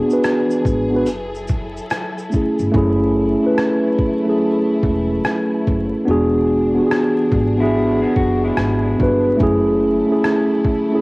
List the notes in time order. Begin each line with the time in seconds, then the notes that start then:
Already playing: E3 B3 D4 F#4 G#4
0.08 B3 D4 F#4, shaker
0.13 B4
0.24 cross-stick, closed hi-hat, shaker
0.50 shaker
0.65 G#1, kick, shaker
0.90 B3 D4 F#4
0.96 B4
1.06 F#1 F#3 E4 A4, closed hi-hat, shaker
1.35 shaker
1.48 kick, shaker
1.77 shaker
1.90 cross-stick, closed hi-hat, shaker
2.18 shaker
2.30 A3 C#4, shaker
2.34 E4 G#4, kick
2.59 G1, shaker
2.71 F#1 F#3 A3 C#4 E4, kick
2.75 E4 G#4
3.40 A3 C#4
3.44 E4 B4
3.58 cross-stick
3.99 kick
4.24 A3 C#4 E4
4.29 G#4
4.83 E1, kick
5.25 cross-stick
5.67 F#1, kick
6.05 E1 E3 B3 D4 F#4 G#4
6.11 G#4
6.74 B3 D4 F#4
6.80 G4
6.87 G#4
6.91 cross-stick
7.32 G#1, kick
7.57 G#3 B3 D4 E4 F#4
7.63 G#4
8.02 B3 G#4
8.16 F#1 F#4, kick
8.44 G#3 E4
8.57 G#1, cross-stick
8.97 G1 B3 D4 F#4, kick
9.03 B4
9.37 F#1 F#3 A3 C#4 E4, kick
9.43 G#4
10.06 A3 C#4
10.11 E4 G#4
10.24 cross-stick
10.65 kick
10.89 A3 C#4
10.94 E4 G#4